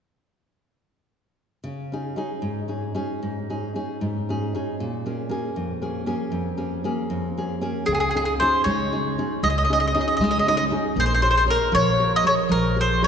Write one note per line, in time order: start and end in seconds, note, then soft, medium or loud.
1.64 2.16 C#3 soft
1.92 2.15 C#4 soft
1.92 2.16 D#4 soft
1.92 2.16 G#4 soft
2.16 2.59 C#4 soft
2.16 2.60 D#4 soft
2.16 2.60 G#4 soft
2.42 2.94 G#2 soft
2.68 2.93 C#4 soft
2.68 2.94 D#4 soft
2.68 2.94 G#4 soft
2.95 3.38 C#4 soft
2.95 3.38 D#4 soft
2.95 3.39 G#4 soft
3.23 3.74 G#2 soft
3.50 3.74 C#4 soft
3.50 3.74 D#4 soft
3.50 3.75 G#4 soft
3.75 4.18 C#4 soft
3.75 4.17 D#4 soft
3.75 4.18 G#4 soft
4.01 4.52 G#2 soft
4.29 4.53 C#4 soft
4.29 4.53 D#4 soft
4.29 4.54 G#4 soft
4.55 4.74 C#4 soft
4.55 4.74 D#4 soft
4.55 4.75 G#4 soft
4.80 5.30 A#2 medium
5.06 5.28 A#3 soft
5.06 5.29 C#4 soft
5.06 5.30 G#4 soft
5.29 5.72 A#3 soft
5.29 5.72 C#4 soft
5.29 5.73 G#4 soft
5.56 6.06 F2 soft
5.82 6.05 A#3 soft
5.82 6.05 C#4 soft
5.82 6.06 G#4 soft
6.06 6.48 A#3 soft
6.06 6.49 C#4 soft
6.06 6.49 G#4 soft
6.32 6.83 F2 soft
6.57 6.83 A#3 soft
6.57 6.83 C#4 soft
6.57 6.84 G#4 soft
6.84 7.27 A#3 soft
6.84 7.26 C#4 soft
6.84 7.27 G#4 soft
7.10 7.61 F2 medium
7.37 7.60 A#3 soft
7.37 7.60 C#4 soft
7.37 7.61 G#4 soft
7.61 7.82 A#3 soft
7.61 7.83 C#4 soft
7.61 7.83 G#4 soft
7.86 8.39 C#2 medium
7.86 8.39 C#3 soft
7.86 7.93 G#4 medium
7.95 7.99 G#4 soft
8.00 8.10 G#4 medium
8.11 8.15 G#4 soft
8.15 8.39 C#4 soft
8.15 8.40 D#4 soft
8.15 8.41 G#4 soft
8.15 8.24 G#4 soft
8.25 8.33 G#4 soft
8.40 8.83 C#4 soft
8.40 8.83 D#4 soft
8.40 8.84 G#4 soft
8.40 8.64 C5 medium
8.64 9.16 C#3 medium
8.64 9.17 G#3 soft
8.64 9.39 C#5 medium
8.92 9.17 C#4 soft
8.92 9.17 D#4 soft
8.92 9.18 G#4 soft
9.18 9.60 C#4 soft
9.18 9.60 D#4 soft
9.18 9.60 G#4 soft
9.43 9.93 C#2 medium
9.43 9.94 G#3 soft
9.43 9.49 D#5 medium
9.50 9.57 D#5 soft
9.58 9.63 D#5 medium
9.65 9.72 D#5 soft
9.70 9.93 C#4 soft
9.70 9.94 D#4 soft
9.70 9.95 G#4 soft
9.70 9.79 D#5 medium
9.80 9.86 D#5 medium
9.88 9.93 D#5 soft
9.95 10.37 C#4 soft
9.95 10.37 D#4 soft
9.95 10.37 G#4 soft
9.95 10.00 D#5 soft
10.01 10.07 D#5 soft
10.08 10.16 D#5 soft
10.17 10.70 C#3 medium
10.17 10.23 D#5 medium
10.21 10.71 G#3 medium
10.21 10.30 D#5 soft
10.31 10.38 D#5 medium
10.39 10.47 D#5 medium
10.48 10.69 C#4 soft
10.48 10.70 D#4 soft
10.48 10.71 G#4 soft
10.48 10.55 D#5 medium
10.57 10.63 D#5 medium
10.71 10.91 C#4 soft
10.71 10.92 D#4 soft
10.71 10.92 G#4 soft
10.96 11.46 A#1 medium
10.96 11.47 A#3 soft
10.96 11.05 C5 medium
11.06 11.13 C5 medium
11.14 11.21 C5 medium
11.22 11.45 G#4 soft
11.22 11.45 A#4 soft
11.22 11.28 C5 medium
11.22 11.47 C#5 soft
11.31 11.36 C5 medium
11.37 11.43 C5 medium
11.46 11.89 G#4 soft
11.46 11.89 A#4 soft
11.46 11.90 C#5 soft
11.50 11.74 A#4 medium
11.72 12.24 A#2 medium
11.72 12.24 F3 medium
11.72 12.11 C#5 medium
12.00 12.23 G#4 soft
12.00 12.23 A#4 soft
12.00 12.24 C#5 soft
12.16 12.26 D#5 medium
12.24 12.67 G#4 soft
12.24 12.67 A#4 soft
12.24 12.68 C#5 soft
12.24 12.34 C#5 medium
12.49 13.02 A#1 medium
12.49 13.01 F3 medium
12.49 12.77 A#4 medium
12.76 13.01 G#4 soft
12.76 13.02 A#4 soft
12.76 13.02 C#5 soft
12.81 13.03 C5 medium
13.02 13.08 G#4 soft
13.02 13.08 A#4 soft
13.02 13.08 C#5 soft
13.02 13.08 C#5 medium